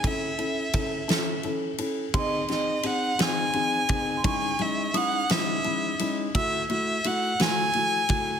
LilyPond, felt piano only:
\new Staff \with { instrumentName = "Felt piano" } { \time 6/8 \key cis \minor \tempo 4. = 57 <cis' e' a'>8 <cis' e' a'>8 <cis' e' a'>8 <cis' e' a'>8 <cis' e' a'>8 <cis' e' a'>8 | <bis dis' gis'>8 <bis dis' gis'>8 <bis dis' gis'>8 <bis dis' gis'>8 <bis dis' gis'>8 <bis dis' gis'>8 | <gis cis' dis' e'>8 <gis cis' dis' e'>8 <gis cis' dis' e'>8 <gis cis' dis' e'>8 <gis cis' dis' e'>8 <gis cis' dis' e'>8 | <a e' fis'>8 <a e' fis'>8 <a e' fis'>8 <a e' fis'>8 <a e' fis'>8 <a e' fis'>8 | }